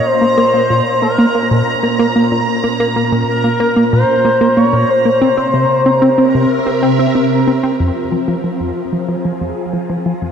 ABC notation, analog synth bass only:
X:1
M:4/4
L:1/16
Q:1/4=93
K:Bbm
V:1 name="Analog synth bass"
z B, B, B, B,, z B, B, B, B,, z B, B, B, B,, z | B, B, B, B,, z B, B, B, B,, z B, B, B, B,, z B, | C C C, z C C C C, z C C C C, z C C | [K:Fm] F,, z F, F, F, F,, z F, F, F, F,, z F, F, F, F,, |]